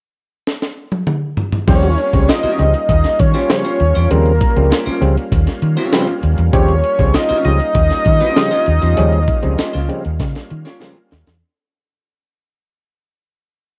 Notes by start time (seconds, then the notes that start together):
0.47 snare
0.62 snare
0.92 high tom
1.07 mid tom
1.37 floor tom
1.52 floor tom
1.67 D#2 C#3 F3 G3 A#3 C4 C#4 F4 G4 C#5, kick, crash
1.83 closed hi-hat
1.98 closed hi-hat
2.13 C#2 C#3 F3 G3 C4, kick, closed hi-hat
2.28 C#4 F4 G4 C5 D#5, snare, closed hi-hat
2.43 G3 A#3 C#4 F4 G4 C#5, muted fingered electric bass stroke, closed hi-hat
2.59 C#2 C#3 F3 G3 C4, closed hi-hat
2.74 closed hi-hat
2.89 D#2 G3 C4 D#5, kick, closed hi-hat
3.04 snare, closed hi-hat
3.19 D#3 C#5, kick, closed hi-hat
3.34 C#4 F4 G4 C5, closed hi-hat
3.49 C#3 F3 G3 C4 C#5, snare, closed hi-hat
3.64 C#4 F4 G4 C5, closed hi-hat
3.80 D#2 G3 C4, closed hi-hat
3.95 E2 C#4 F4 G4 C5, closed hi-hat
4.11 D#2 C#3 F3 G3 C4 A#4, closed hi-hat
4.26 closed hi-hat
4.41 kick, closed hi-hat
4.56 C#2 C#3 F3 G3 C4, closed hi-hat
4.70 C#4 F4 G4 C5, snare, closed hi-hat
4.86 G3 C4 C#4 F4 G4 C5, muted fingered electric bass stroke, closed hi-hat
5.01 C#2 C#3 F3 G3 C4, closed hi-hat
5.17 closed hi-hat
5.32 D#2 G3 C4, kick, closed hi-hat
5.47 snare, closed hi-hat
5.62 D#3, closed hi-hat
5.77 C#4 F4 G4 C#5, closed hi-hat
5.92 C#3 F3 G3 C4 C#4 F4 G4 C5, snare, closed hi-hat
6.07 closed hi-hat
6.23 D#2 G3 C4, closed hi-hat
6.38 E2, closed hi-hat
6.53 D#2 C#3 F3 G3 C4 G4 C#5, kick, closed hi-hat
6.68 closed hi-hat
6.84 closed hi-hat
6.99 C#2 C#3 F3 G3 C4, kick, closed hi-hat
7.14 C#4 F4 G4 C5 D#5, snare, closed hi-hat
7.29 G3 C4 C#4 F4 G4 C#5, muted fingered electric bass stroke, closed hi-hat
7.44 C#2 C#3 F3 G3 C4 D#5, closed hi-hat
7.60 closed hi-hat
7.75 D#2 G3 C4, kick, closed hi-hat
7.90 snare, closed hi-hat
8.05 D#3, kick, closed hi-hat
8.20 C#4 F4 G4 C5, closed hi-hat
8.36 C#3 F3 G3 C4, snare, closed hi-hat
8.51 C#4 F4 G4 C5, closed hi-hat
8.66 D#2 G3 C4, closed hi-hat
8.82 E2 C#4 F4 G4 C5, closed hi-hat
8.97 D#2 C#3 F3 G3 C#4, closed hi-hat
9.12 closed hi-hat
9.28 kick, closed hi-hat
9.43 C#2 C#3 F3 G3 C4, closed hi-hat
9.58 C#4 F4 G4 C5, snare, closed hi-hat
9.73 C#2 G3 A#3 C#4 F4 G4 C5, closed hi-hat
9.88 C#3 F3 G3 C4, closed hi-hat
10.05 D#2, closed hi-hat
10.19 C#3 G3 C4, kick, snare, closed hi-hat
10.35 snare, closed hi-hat
10.50 D#3, closed hi-hat
10.65 C#4 F4 G4 C#5, snare, closed hi-hat
10.80 C#3 F3 G3 A#3 C#4 F4 G4 C5, snare, closed hi-hat
10.96 closed hi-hat
11.11 D#2 G3 C4, snare, open hi-hat
11.27 E2, snare, closed hi-hat